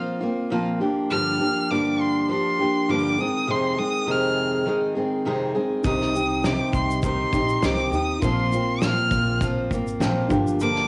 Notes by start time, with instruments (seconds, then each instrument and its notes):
Already playing: steel-string acoustic guitar F3 A#3 C4 F4
0.21 steel-string acoustic guitar A#3 C4 F4
0.50 steel-string acoustic guitar A#2 F3 A#3 C4 F4
0.81 steel-string acoustic guitar F3 A#3 D4 G4
1.10 steel-string acoustic guitar G2 D3 F3 A#3 D4 G4, violin F6
1.39 steel-string acoustic guitar F3 A#3 D4 G4
1.70 steel-string acoustic guitar G2 D3 F3 A#3 D4 G4, violin D6
2.00 violin C6
2.29 steel-string acoustic guitar F3 A#3 D4 G4, violin C6
2.59 steel-string acoustic guitar F3 A#3 D4 G4
2.88 steel-string acoustic guitar G2 D3 F3 A#3 D4 G4, violin D6
3.18 steel-string acoustic guitar D#3 G#3 C4 G#4, violin D#6
3.47 steel-string acoustic guitar F2 C3 D#3 G#3 C4 G#4, violin C6
3.77 steel-string acoustic guitar D#3 G#3 C4 G#4, violin D#6
4.06 steel-string acoustic guitar F2 C3 D#3 G#3 C4 G#4
4.11 violin F6
4.66 steel-string acoustic guitar D#3 G#3 C4 G#4
4.95 steel-string acoustic guitar D#3 G#3 C4 G#4
5.25 steel-string acoustic guitar F2 C3 D#3 G#3 C4 G#4
5.55 steel-string acoustic guitar D#3 G#3 C4 G#4
5.81 upright bass C2, steel-string acoustic guitar C3 D#3, felt piano D#4 G4, kick, shaker
5.86 steel-string acoustic guitar C4 D#4 G4, felt piano C5, violin D#6
6.01 snare
6.14 steel-string acoustic guitar C4 D#4 G4, shaker
6.44 steel-string acoustic guitar C3 D#3 C4 D#4 G4, violin D6, snare, shaker
6.73 upright bass C2, violin C6, kick, shaker
6.91 shaker
7.03 steel-string acoustic guitar D#3 C4 D#4 G4, violin C6, kick, shaker
7.31 upright bass A#1, felt piano D#4 G4 D5, steel-string acoustic guitar D#4 G4, kick, shaker
7.35 steel-string acoustic guitar C4
7.40 felt piano D#5
7.49 shaker
7.62 upright bass C2, steel-string acoustic guitar C3 D#3 C4 D#4 G4, violin D6, snare, shaker
7.91 upright bass D#2, steel-string acoustic guitar C4 D#4 G4, shaker
7.95 violin D#6
8.19 upright bass A#1, steel-string acoustic guitar A#2 F3, felt piano F4 A#4, kick, shaker
8.23 steel-string acoustic guitar A#3 C4 F4, felt piano C5, violin C6
8.52 steel-string acoustic guitar A#3 C4 F4, shaker
8.81 steel-string acoustic guitar A#2 F3 A#3 C4 F4, violin F6, snare, shaker
9.11 upright bass A#1, kick, shaker
9.41 steel-string acoustic guitar F3 A#3 C4 F4, kick, shaker
9.71 upright bass G#1, steel-string acoustic guitar A#3 C4 F4, kick, shaker
9.87 shaker
10.00 upright bass A#1, steel-string acoustic guitar A#2 F3 A#3 C4 F4, felt piano G5, snare, shaker
10.28 upright bass G1, felt piano D4 F4 G4 A#4 F5, steel-string acoustic guitar D4 G4, kick, shaker
10.32 steel-string acoustic guitar F3 A#3
10.47 shaker
10.60 steel-string acoustic guitar G2 D3 F3 A#3 D4 G4, violin D6, shaker
10.75 snare